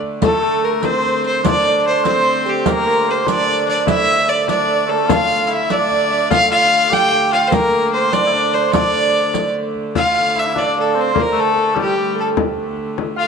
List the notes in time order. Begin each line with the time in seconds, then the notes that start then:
Already playing: D3 A3 D5 E5
0.02 frame drum
0.21 D3 A3 A4, riq, frame drum
0.41 A3 A4
0.63 A#4
0.82 C4 C5, riq, frame drum
1.05 frame drum
1.24 C5, riq
1.43 D4 D5, riq, frame drum
1.67 D5
1.85 C5
2.05 C4 C5, riq, frame drum
2.26 frame drum
2.45 G4, riq
2.66 A#3 A#4, riq, frame drum
2.82 A#3 C5
2.87 A#4
3.08 C5
3.27 D4 D5, riq, frame drum
3.48 frame drum
3.66 D4 D5, riq
3.86 E4 E5, riq, frame drum
4.01 E5
4.15 E5
4.28 D5
4.47 D4 D5, riq, frame drum
4.87 A3 A4
4.92 A#3
4.99 A3
5.07 D3 A3 F4 F5, riq, frame drum
5.30 F5
5.47 E4 F5
5.51 E5
5.70 D4 D5, riq, frame drum
5.91 frame drum
6.11 E5, riq
6.30 F4 F5, riq, frame drum
6.51 F4 F5
6.90 G4 G5, riq, frame drum
7.11 G5, frame drum
7.32 F4 F5, riq
7.47 A#4 C5
7.52 A#3 A#4, riq, frame drum
7.93 C5
8.12 D4 D5, riq, frame drum
8.27 E4
8.33 D4 D5, frame drum
8.53 C5, riq
8.73 D4 D5, riq, frame drum
8.95 frame drum
9.34 riq, frame drum
9.75 frame drum
9.95 D3 A3 F4 F5, frame drum
10.14 F5
10.36 E4 E5, frame drum
10.41 D4
10.47 E4
10.55 D4 D5, frame drum
10.62 D5
10.66 D5
10.76 A4
10.95 C4 C5
11.01 C5
11.14 A#3 A#4, frame drum
11.21 A#4
11.32 A3 A4
11.40 A4
11.55 A4, frame drum
11.69 A4
11.75 G3 G4, frame drum
11.81 G4
11.97 G3
12.15 A4
12.20 A4
12.37 frame drum
12.78 frame drum
12.98 frame drum
13.16 F4 F5